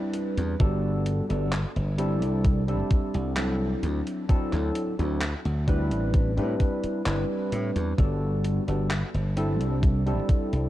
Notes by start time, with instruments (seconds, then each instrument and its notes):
Already playing: tine electric piano G3 C4 D4 E4 B4
0.14 closed hi-hat
0.37 slap bass E2, closed hi-hat
0.59 slap bass G1, tine electric piano G3 B3 D4 F#4 A4, kick, closed hi-hat
1.06 closed hi-hat
1.29 slap bass G1, tine electric piano G3 B3 D4 F#4 A4, closed hi-hat
1.52 clap, closed hi-hat
1.76 slap bass G1, closed hi-hat
1.98 tine electric piano G3 C4 D4 E4 A4, closed hi-hat
2.22 slap bass C2, closed hi-hat
2.45 kick, closed hi-hat
2.68 tine electric piano G3 C4 D4 E4 A4, closed hi-hat
2.91 kick, closed hi-hat
3.14 slap bass C2, closed hi-hat
3.36 tine electric piano F#3 C4 D4 E4 A4, clap, closed hi-hat
3.83 slap bass D2, closed hi-hat
4.07 closed hi-hat
4.28 tine electric piano F#3 C4 D4 E4 A4, muted slap bass stroke, kick, closed hi-hat
4.53 slap bass D2, clap, closed hi-hat
4.75 closed hi-hat
4.99 slap bass D2, tine electric piano F#3 C4 D4 E4 A4, closed hi-hat
5.21 clap, closed hi-hat
5.45 slap bass D2, closed hi-hat
5.67 tine electric piano G3 C4 D4 E4 B4, kick, closed hi-hat
5.91 slap bass A1, closed hi-hat
6.14 kick, closed hi-hat
6.37 slap bass A2, tine electric piano G3 C4 D4 E4 B4, closed hi-hat
6.60 kick, closed hi-hat
6.84 muted slap bass stroke, closed hi-hat
7.05 slap bass G1, tine electric piano G3 C4 D4 E4 B4, clap, closed hi-hat
7.52 slap bass A2, closed hi-hat
7.76 slap bass E2, closed hi-hat
7.98 slap bass G1, tine electric piano G3 B3 D4 F#4 A4, kick, closed hi-hat
8.44 closed hi-hat
8.67 slap bass G1, tine electric piano G3 B3 D4 F#4 A4, closed hi-hat
8.91 clap, closed hi-hat
9.14 slap bass G1, closed hi-hat
9.36 tine electric piano G3 C4 D4 E4 A4, closed hi-hat
9.60 slap bass C2, closed hi-hat
9.83 kick, closed hi-hat
10.06 tine electric piano G3 C4 D4 E4 A4, closed hi-hat
10.29 kick, closed hi-hat
10.53 slap bass C2, closed hi-hat